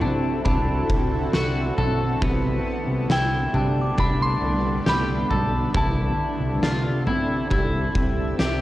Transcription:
Already playing: ambient pad D3 C4 E4 F#4 A4, synth bell A5
0.01 analog synth bass C3, clean electric guitar D4, floor tom
0.45 analog synth bass C2, clean electric guitar D4, glockenspiel B5, kick, floor tom
0.90 analog synth bass C2, kick
1.33 analog synth bass C2, clean electric guitar F#4, snare
1.78 analog synth bass B1, clean electric guitar A4, floor tom
2.22 analog synth bass C2, ambient pad D3 G3 A3 B3 D4, clean electric guitar B3, kick, floor tom
2.87 analog synth bass C2
3.09 analog synth bass C2, clean electric guitar E4, synth bell G5, snare
3.54 analog synth bass C3, clean electric guitar D4, glockenspiel A5, floor tom
3.81 glockenspiel D6
3.98 analog synth bass C2, clean electric guitar D4, synth bell B5, kick, floor tom
4.22 synth bell C6
4.42 analog synth bass C2
4.86 analog synth bass C2, clean electric guitar G4, synth bell B5, snare
5.30 analog synth bass B1, clean electric guitar A4, floor tom
5.74 analog synth bass C2, ambient pad C4 G4 A4 E5, clean electric guitar E4, synth bell A5, kick, floor tom
6.40 analog synth bass C2
6.62 analog synth bass C2, clean electric guitar F4, snare
7.07 analog synth bass C3, clean electric guitar E4, floor tom
7.50 analog synth bass C2, clean electric guitar E4, kick, floor tom
7.95 analog synth bass C2, kick
8.39 analog synth bass C2, clean electric guitar G4, snare

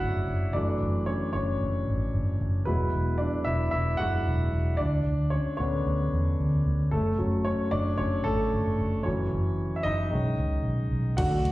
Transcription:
Already playing: grand piano F#3 A3 C#4 D4 E4 F#4 C#5 D5 E5 F#5
0.02 fingered electric bass F#1
0.28 fingered electric bass F#1
0.53 fingered electric bass F#1, grand piano E3 F#3 A3 D4 D5
0.81 fingered electric bass F#1
1.06 grand piano C#4 C#5
1.33 fingered electric bass F#1, grand piano C#4 C#5
1.62 fingered electric bass F#1
1.88 fingered electric bass G#1
2.15 fingered electric bass F#1
2.41 fingered electric bass F#1
2.65 fingered electric bass E1, grand piano F#3 G#3 B3 E4 B4
2.94 fingered electric bass E1
3.18 grand piano D4 D5
3.44 fingered electric bass E1, grand piano E4 E5
3.71 fingered electric bass E1, grand piano E4 E5
3.97 fingered electric bass F#1, grand piano F#3 G#3 E4 F#4 F#5
4.26 fingered electric bass E1
4.53 fingered electric bass E1
4.77 fingered electric bass D2, grand piano D4 D5
5.07 fingered electric bass D2
5.30 grand piano C#4 C#5
5.57 fingered electric bass D2, grand piano D3 B3 C#4 C#5
5.87 fingered electric bass D2
6.13 fingered electric bass E2
6.40 fingered electric bass D2
6.66 fingered electric bass D2
6.91 fingered electric bass F#1, grand piano A3 A4
7.18 fingered electric bass F#1, grand piano F#3 A3 C#4
7.45 grand piano C#4 C#5
7.71 fingered electric bass F#1, grand piano D4 D5
7.98 fingered electric bass F#1, grand piano C#4 C#5
8.24 fingered electric bass G#1, grand piano A3 A4
8.53 fingered electric bass F#1
8.79 fingered electric bass F#1
9.03 fingered electric bass F#1, grand piano E3 F#3 C#4 C#5
9.32 fingered electric bass F#1
9.76 grand piano E5
9.83 fingered electric bass F#1, grand piano D#4 D#5
10.11 fingered electric bass B1, grand piano D#3 G#3 C#4
10.38 fingered electric bass C#2
10.65 fingered electric bass B1
10.91 fingered electric bass B1
11.17 fingered electric bass D2, string section D3 F#3 A3 F#4, grand piano F#3 A3 D4 F#4 F#5, kick, closed hi-hat, crash
11.45 fingered electric bass D2, closed hi-hat

